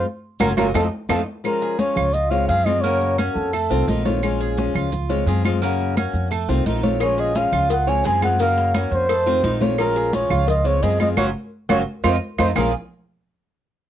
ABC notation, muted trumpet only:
X:1
M:4/4
L:1/8
Q:1/4=173
K:Bbm
V:1 name="Muted trumpet"
z2 B B =A z A z | B2 d2 e f f e | d2 z =A4 z | z8 |
z8 | d e f2 g a a g | f2 z c4 z | B2 d2 e d e e |
d z2 d z c z c | B z6 z |]